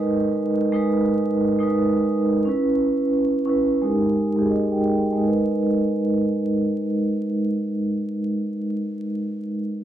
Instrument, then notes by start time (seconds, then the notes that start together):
vibraphone
Already playing: G#3 D#4 A#4 B4 D#5
0.72 G#3 D#4 A#4 B4
1.59 G#3 D#4 A#4 B4
2.45 C#4 E4 B4
3.45 C#4 E4 B4
3.82 G#3 D#4 G4 A#4
4.36 G#3 D#4 G4 G#4
4.46 A#4 D#5
4.72 G5
4.86 G5
5.07 D#5
5.13 G#3
5.18 D#4
5.23 A#4
5.28 B4